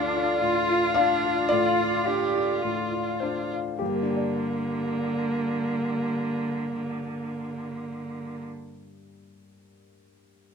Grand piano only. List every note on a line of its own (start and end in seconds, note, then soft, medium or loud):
0.00 1.46 D2 medium
0.00 0.32 D4 medium
0.00 0.16 F4 medium
0.00 0.91 D5 loud
0.16 0.58 F4 medium
0.41 0.84 A2 medium
0.69 1.12 F4 medium
0.94 1.39 D4 medium
0.94 1.45 F5 loud
1.24 1.67 F4 medium
1.49 1.95 A2 medium
1.49 3.17 D5 loud
1.79 2.23 F4 medium
2.07 2.52 D4 medium
2.35 2.80 F4 medium
2.65 3.10 A2 medium
2.93 3.40 F4 medium
3.20 3.69 D4 medium
3.20 3.75 C5 medium
3.52 3.81 F4 medium
3.79 8.43 G2 medium
3.79 4.08 G4 medium
3.88 8.50 G3 medium
3.95 8.57 A#3 medium
4.03 8.64 D4 medium
4.09 8.71 G4 medium
4.17 8.78 D5 medium